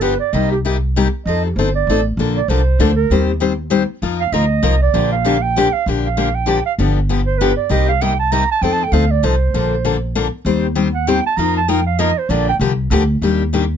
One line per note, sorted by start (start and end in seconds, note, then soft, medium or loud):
0.00 0.15 G1 medium
0.00 0.13 D3 medium
0.00 0.13 F3 medium
0.00 0.13 B3 medium
0.00 0.13 D4 medium
0.00 0.13 G4 loud
0.00 0.19 B4 medium
0.19 0.34 D5 medium
0.33 1.07 C2 medium
0.33 0.53 C3 medium
0.33 0.54 G3 medium
0.33 0.54 A#3 medium
0.33 0.54 D#4 medium
0.33 0.54 G4 medium
0.33 0.51 D#5 medium
0.51 0.59 G4 medium
0.65 0.76 C3 medium
0.65 0.75 G3 medium
0.65 0.76 A#3 medium
0.65 0.76 D#4 medium
0.65 0.76 G4 medium
0.96 1.07 C3 medium
0.96 1.07 G3 medium
0.96 1.07 A#3 medium
0.96 1.07 D#4 loud
0.96 1.07 G4 loud
1.25 1.50 F2 medium
1.25 1.46 F3 medium
1.25 1.47 C4 medium
1.25 1.47 D#4 medium
1.25 1.47 A4 medium
1.25 1.43 D#5 medium
1.45 1.58 G4 medium
1.56 1.82 G1 medium
1.56 1.69 F3 medium
1.56 1.68 C4 medium
1.56 1.69 D#4 medium
1.56 1.69 A4 medium
1.56 1.75 C5 medium
1.75 2.04 D5 medium
1.87 2.13 A1 medium
1.87 1.99 F3 medium
1.87 1.99 C4 medium
1.87 2.00 D#4 medium
1.91 2.00 A4 loud
2.17 2.42 A#1 medium
2.17 2.38 D3 medium
2.17 2.38 F3 medium
2.17 2.39 A#3 medium
2.17 2.39 D4 medium
2.17 2.39 A4 medium
2.36 2.50 D5 medium
2.48 2.75 C2 medium
2.48 2.60 D3 medium
2.48 2.60 F3 medium
2.48 2.60 A#3 medium
2.48 2.60 D4 medium
2.48 2.60 A4 medium
2.48 2.95 C5 medium
2.79 3.05 D2 medium
2.79 2.90 D3 medium
2.79 2.90 F3 loud
2.79 2.91 A#3 medium
2.79 2.91 D4 medium
2.79 2.91 A4 medium
2.96 3.25 A#4 medium
3.10 3.84 D#2 medium
3.10 3.30 D#3 medium
3.10 3.31 G3 medium
3.10 3.31 C4 medium
3.10 3.31 G4 medium
3.10 3.31 C5 medium
3.40 3.51 D#3 medium
3.40 3.52 G3 medium
3.40 3.52 C4 medium
3.40 3.52 G4 medium
3.40 3.52 C5 medium
3.70 3.82 D#3 medium
3.70 3.82 G3 medium
3.70 3.82 C4 loud
3.70 3.82 G4 medium
3.70 3.82 C5 loud
4.02 4.27 F2 medium
4.02 4.22 F3 medium
4.02 4.22 A#3 medium
4.02 4.23 D#4 medium
4.02 4.22 F4 medium
4.02 4.22 A#4 medium
4.20 4.34 F5 loud
4.32 4.59 D2 medium
4.32 4.43 F3 medium
4.32 4.44 A#3 medium
4.32 4.44 D#4 medium
4.32 4.44 F4 medium
4.32 4.44 A#4 medium
4.32 4.81 D#5 loud
4.63 4.89 C2 medium
4.63 4.74 F3 loud
4.63 4.74 A#3 medium
4.63 4.74 D#4 loud
4.63 4.74 F4 medium
4.63 4.75 A#4 loud
4.82 5.10 D5 loud
4.94 5.67 A#1 medium
4.94 5.14 D3 medium
4.94 5.14 F3 medium
4.94 5.14 A#3 medium
4.94 5.14 D4 medium
4.94 5.14 G4 medium
5.12 5.43 F5 loud
5.25 5.36 D3 medium
5.25 5.36 F3 medium
5.25 5.36 A#3 medium
5.25 5.36 D4 medium
5.25 5.36 G4 medium
5.42 5.74 G5 loud
5.56 5.67 D3 medium
5.56 5.67 F3 medium
5.56 5.67 A#3 medium
5.56 5.67 D4 loud
5.56 5.67 G4 loud
5.73 5.86 F5 loud
5.86 6.60 A#1 medium
5.86 6.07 D3 medium
5.86 6.07 F3 medium
5.86 6.07 A#3 medium
5.86 6.07 D4 medium
5.86 6.07 G4 medium
6.05 6.36 F5 medium
6.17 6.28 D3 medium
6.17 6.28 F3 medium
6.17 6.28 A#3 medium
6.17 6.28 D4 medium
6.17 6.28 G4 medium
6.35 6.65 G5 loud
6.46 6.58 D3 medium
6.46 6.58 F3 medium
6.46 6.58 A#3 medium
6.46 6.58 D4 loud
6.46 6.58 G4 loud
6.65 6.73 F5 loud
6.78 7.52 G1 medium
6.78 6.98 D3 medium
6.78 6.98 F3 medium
6.78 6.99 B3 medium
6.78 6.99 D4 medium
6.78 6.99 G4 medium
7.09 7.20 D3 medium
7.09 7.20 F3 medium
7.09 7.20 B3 medium
7.09 7.21 D4 medium
7.09 7.20 G4 medium
7.26 7.39 C5 loud
7.38 7.51 D3 medium
7.38 7.51 F3 loud
7.38 7.51 B3 medium
7.38 7.51 D4 medium
7.38 7.51 G4 loud
7.38 7.56 B4 medium
7.56 7.72 D5 medium
7.69 8.44 C2 medium
7.69 7.90 C3 medium
7.69 7.90 G3 medium
7.69 7.90 A#3 medium
7.69 7.90 D#4 medium
7.69 7.90 G4 medium
7.69 7.88 D#5 medium
7.88 8.03 F5 loud
8.01 8.12 C3 medium
8.01 8.12 G3 medium
8.01 8.12 A#3 medium
8.01 8.12 D#4 loud
8.01 8.12 G4 medium
8.01 8.19 G5 loud
8.19 8.33 A5 loud
8.32 8.43 C3 medium
8.32 8.43 G3 medium
8.32 8.43 A#3 medium
8.32 8.43 D#4 medium
8.32 8.43 G4 loud
8.32 8.50 A#5 loud
8.51 8.64 A5 loud
8.61 8.86 F2 medium
8.61 8.82 F3 medium
8.61 8.83 C4 medium
8.61 8.83 D#4 medium
8.61 8.83 A4 medium
8.61 8.74 G5 medium
8.73 8.84 A5 loud
8.83 8.94 G5 medium
8.92 9.18 D2 medium
8.92 9.03 F3 medium
8.92 9.04 C4 medium
8.92 9.04 D#4 medium
8.92 9.04 A4 medium
8.92 9.12 F5 medium
9.11 9.26 D5 loud
9.23 9.49 C2 medium
9.23 9.34 F3 medium
9.23 9.34 C4 medium
9.23 9.35 D#4 medium
9.23 9.34 A4 medium
9.23 10.16 C5 medium
9.54 10.28 A#1 medium
9.54 9.74 D3 medium
9.54 9.74 F3 medium
9.54 9.74 A#3 medium
9.54 9.74 D4 medium
9.54 9.75 A4 medium
9.85 9.96 D3 medium
9.85 9.96 F3 medium
9.85 9.96 A#3 medium
9.85 9.96 D4 medium
9.85 9.96 A4 medium
10.15 10.26 D3 medium
10.15 10.26 F3 medium
10.15 10.26 A#3 loud
10.15 10.27 D4 loud
10.15 10.27 A4 loud
10.45 11.19 D#2 medium
10.45 10.66 D#3 medium
10.45 10.66 G3 medium
10.45 10.66 C4 medium
10.45 10.66 G4 medium
10.45 10.66 C5 medium
10.75 10.87 D#3 medium
10.75 10.87 G3 medium
10.75 10.87 C4 medium
10.75 10.87 G4 medium
10.75 10.87 C5 medium
10.94 11.09 F#5 loud
11.07 11.18 D#3 medium
11.07 11.19 G3 medium
11.07 11.19 C4 medium
11.07 11.19 G4 medium
11.07 11.19 C5 loud
11.07 11.25 G5 medium
11.26 11.38 A5 loud
11.37 12.11 F2 medium
11.37 11.58 F3 medium
11.37 11.58 A#3 medium
11.37 11.58 D#4 medium
11.37 11.58 F4 medium
11.37 11.58 A#4 medium
11.37 11.56 A#5 loud
11.57 11.71 A5 loud
11.68 11.79 F3 medium
11.68 11.79 A#3 medium
11.68 11.79 D#4 medium
11.68 11.80 F4 medium
11.68 11.79 A#4 medium
11.68 11.86 G5 medium
11.86 12.01 F5 medium
11.99 12.10 F3 medium
11.99 12.10 A#3 medium
11.99 12.10 D#4 loud
11.99 12.10 F4 loud
11.99 12.10 A#4 loud
11.99 12.20 D#5 loud
12.18 12.31 C5 loud
12.29 12.54 A#1 medium
12.29 12.49 D3 medium
12.29 12.50 F3 medium
12.29 12.50 A#3 medium
12.29 12.50 D4 medium
12.29 12.50 G4 medium
12.29 12.48 D5 medium
12.49 12.56 G5 loud
12.59 12.86 C2 medium
12.59 12.71 D3 medium
12.59 12.72 F3 medium
12.59 12.72 A#3 medium
12.59 12.72 D4 medium
12.59 12.72 G4 medium
12.90 13.17 D2 medium
12.90 13.02 D3 loud
12.90 13.02 F3 loud
12.90 13.02 A#3 loud
12.90 13.03 D4 loud
12.90 13.03 G4 loud
13.21 13.77 D#2 medium
13.21 13.42 D#3 medium
13.21 13.42 G3 medium
13.21 13.42 A#3 medium
13.21 13.42 D4 medium
13.21 13.42 G4 medium
13.53 13.63 D#3 medium
13.53 13.64 G3 medium
13.53 13.64 A#3 medium
13.53 13.64 D4 medium
13.53 13.64 G4 medium